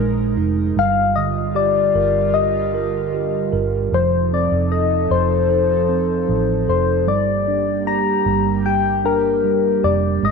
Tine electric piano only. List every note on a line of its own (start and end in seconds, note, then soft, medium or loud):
0.00 0.78 G#3 soft
0.00 0.37 D#4 soft
0.37 0.76 D#4 soft
0.77 3.89 G3 medium
1.17 2.70 D3 soft
1.55 2.34 G4 soft
1.95 2.73 A#4 soft
2.35 3.12 G4 soft
2.74 3.51 A#4 soft
3.13 3.90 G4 soft
3.52 3.91 A#4 soft
3.93 5.10 F3 medium
4.33 5.86 C4 soft
4.72 5.49 A4 soft
5.11 6.27 F3 soft
5.50 6.67 A4 soft
5.89 7.04 C4 soft
6.28 7.05 F3 soft
6.68 7.07 A4 soft
7.07 8.26 G3 medium
7.48 9.02 D4 soft
7.87 8.65 G4 soft
8.27 9.43 G3 soft
8.66 9.82 G4 soft
9.04 10.20 D4 soft
9.44 10.21 G3 soft
9.83 10.22 G4 soft
10.23 10.31 G#3 medium